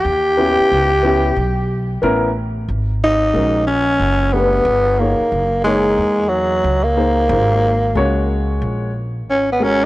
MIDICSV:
0, 0, Header, 1, 5, 480
1, 0, Start_track
1, 0, Key_signature, 5, "minor"
1, 0, Tempo, 659341
1, 33, Time_signature, 4, 2, 24, 8
1, 7176, End_track
2, 0, Start_track
2, 0, Title_t, "Grand piano"
2, 0, Program_c, 0, 0
2, 272, Note_on_c, 0, 59, 70
2, 273, Note_on_c, 0, 61, 77
2, 277, Note_on_c, 0, 64, 68
2, 285, Note_on_c, 0, 66, 66
2, 327, Note_on_c, 0, 67, 85
2, 339, Note_off_c, 0, 66, 0
2, 634, Note_off_c, 0, 59, 0
2, 635, Note_off_c, 0, 61, 0
2, 637, Note_off_c, 0, 64, 0
2, 662, Note_off_c, 0, 67, 0
2, 748, Note_on_c, 0, 59, 81
2, 752, Note_on_c, 0, 61, 72
2, 760, Note_on_c, 0, 64, 74
2, 761, Note_on_c, 0, 67, 90
2, 938, Note_off_c, 0, 59, 0
2, 940, Note_off_c, 0, 61, 0
2, 944, Note_off_c, 0, 64, 0
2, 945, Note_off_c, 0, 67, 0
2, 1469, Note_on_c, 0, 59, 85
2, 1474, Note_on_c, 0, 61, 76
2, 1479, Note_on_c, 0, 64, 80
2, 1480, Note_on_c, 0, 70, 97
2, 1659, Note_off_c, 0, 59, 0
2, 1661, Note_off_c, 0, 61, 0
2, 1663, Note_off_c, 0, 64, 0
2, 1664, Note_off_c, 0, 70, 0
2, 2428, Note_on_c, 0, 56, 66
2, 2433, Note_on_c, 0, 61, 55
2, 2438, Note_on_c, 0, 66, 55
2, 2441, Note_on_c, 0, 70, 64
2, 2618, Note_off_c, 0, 56, 0
2, 2621, Note_off_c, 0, 61, 0
2, 2623, Note_off_c, 0, 66, 0
2, 2625, Note_off_c, 0, 70, 0
2, 3150, Note_on_c, 0, 57, 66
2, 3153, Note_on_c, 0, 62, 61
2, 3157, Note_on_c, 0, 67, 64
2, 3163, Note_on_c, 0, 71, 71
2, 3339, Note_off_c, 0, 57, 0
2, 3341, Note_off_c, 0, 62, 0
2, 3343, Note_off_c, 0, 67, 0
2, 3346, Note_off_c, 0, 71, 0
2, 3631, Note_on_c, 0, 58, 58
2, 3632, Note_on_c, 0, 63, 56
2, 3639, Note_on_c, 0, 68, 53
2, 3642, Note_on_c, 0, 73, 63
2, 3933, Note_off_c, 0, 58, 0
2, 3934, Note_off_c, 0, 63, 0
2, 3937, Note_off_c, 0, 68, 0
2, 3938, Note_off_c, 0, 73, 0
2, 4110, Note_on_c, 0, 58, 76
2, 4113, Note_on_c, 0, 63, 71
2, 4119, Note_on_c, 0, 68, 70
2, 4124, Note_on_c, 0, 73, 80
2, 4797, Note_off_c, 0, 58, 0
2, 4798, Note_off_c, 0, 63, 0
2, 4801, Note_off_c, 0, 68, 0
2, 4804, Note_off_c, 0, 73, 0
2, 5068, Note_on_c, 0, 58, 67
2, 5070, Note_on_c, 0, 63, 62
2, 5074, Note_on_c, 0, 68, 57
2, 5080, Note_on_c, 0, 72, 73
2, 5258, Note_off_c, 0, 58, 0
2, 5259, Note_off_c, 0, 63, 0
2, 5261, Note_off_c, 0, 68, 0
2, 5264, Note_off_c, 0, 72, 0
2, 5307, Note_on_c, 0, 58, 61
2, 5310, Note_on_c, 0, 63, 65
2, 5315, Note_on_c, 0, 68, 59
2, 5320, Note_on_c, 0, 72, 76
2, 5611, Note_off_c, 0, 58, 0
2, 5613, Note_off_c, 0, 63, 0
2, 5615, Note_off_c, 0, 68, 0
2, 5618, Note_off_c, 0, 72, 0
2, 5791, Note_on_c, 0, 56, 83
2, 5798, Note_on_c, 0, 61, 74
2, 5801, Note_on_c, 0, 66, 80
2, 5802, Note_on_c, 0, 73, 100
2, 6477, Note_off_c, 0, 56, 0
2, 6481, Note_off_c, 0, 61, 0
2, 6482, Note_off_c, 0, 66, 0
2, 6483, Note_off_c, 0, 73, 0
2, 6989, Note_on_c, 0, 56, 69
2, 6993, Note_on_c, 0, 61, 62
2, 7001, Note_on_c, 0, 66, 64
2, 7003, Note_on_c, 0, 70, 67
2, 7176, Note_off_c, 0, 56, 0
2, 7176, Note_off_c, 0, 61, 0
2, 7176, Note_off_c, 0, 66, 0
2, 7176, Note_off_c, 0, 70, 0
2, 7176, End_track
3, 0, Start_track
3, 0, Title_t, "Tenor saxophone"
3, 0, Program_c, 1, 66
3, 0, Note_on_c, 1, 67, 108
3, 1452, Note_off_c, 1, 67, 0
3, 2211, Note_on_c, 1, 63, 113
3, 2653, Note_off_c, 1, 63, 0
3, 2673, Note_on_c, 1, 61, 103
3, 3151, Note_on_c, 1, 59, 111
3, 3162, Note_off_c, 1, 61, 0
3, 3631, Note_on_c, 1, 58, 89
3, 3642, Note_off_c, 1, 59, 0
3, 4101, Note_off_c, 1, 58, 0
3, 4106, Note_on_c, 1, 56, 95
3, 4577, Note_on_c, 1, 54, 89
3, 4588, Note_off_c, 1, 56, 0
3, 4979, Note_on_c, 1, 58, 107
3, 4990, Note_off_c, 1, 54, 0
3, 6182, Note_off_c, 1, 58, 0
3, 6771, Note_on_c, 1, 61, 83
3, 6904, Note_off_c, 1, 61, 0
3, 6931, Note_on_c, 1, 59, 85
3, 7014, Note_on_c, 1, 61, 96
3, 7025, Note_off_c, 1, 59, 0
3, 7176, Note_off_c, 1, 61, 0
3, 7176, End_track
4, 0, Start_track
4, 0, Title_t, "Upright bass"
4, 0, Program_c, 2, 32
4, 34, Note_on_c, 2, 39, 91
4, 407, Note_off_c, 2, 39, 0
4, 521, Note_on_c, 2, 37, 88
4, 973, Note_off_c, 2, 37, 0
4, 993, Note_on_c, 2, 35, 87
4, 1449, Note_off_c, 2, 35, 0
4, 1475, Note_on_c, 2, 33, 89
4, 1930, Note_off_c, 2, 33, 0
4, 1954, Note_on_c, 2, 32, 83
4, 2410, Note_off_c, 2, 32, 0
4, 2433, Note_on_c, 2, 34, 82
4, 2889, Note_off_c, 2, 34, 0
4, 2909, Note_on_c, 2, 30, 83
4, 3367, Note_off_c, 2, 30, 0
4, 3384, Note_on_c, 2, 31, 98
4, 3762, Note_off_c, 2, 31, 0
4, 3872, Note_on_c, 2, 30, 85
4, 4328, Note_off_c, 2, 30, 0
4, 4351, Note_on_c, 2, 40, 78
4, 4808, Note_off_c, 2, 40, 0
4, 4834, Note_on_c, 2, 37, 84
4, 5309, Note_on_c, 2, 32, 109
4, 5320, Note_off_c, 2, 37, 0
4, 5767, Note_off_c, 2, 32, 0
4, 5789, Note_on_c, 2, 37, 89
4, 6247, Note_off_c, 2, 37, 0
4, 6272, Note_on_c, 2, 34, 83
4, 6749, Note_off_c, 2, 34, 0
4, 6749, Note_on_c, 2, 32, 80
4, 7176, Note_off_c, 2, 32, 0
4, 7176, End_track
5, 0, Start_track
5, 0, Title_t, "Muted upright bass strokes"
5, 430, Note_on_c, 9, 29, 47
5, 503, Note_off_c, 9, 29, 0
5, 3785, Note_on_c, 9, 29, 49
5, 3857, Note_off_c, 9, 29, 0
5, 7176, End_track
0, 0, End_of_file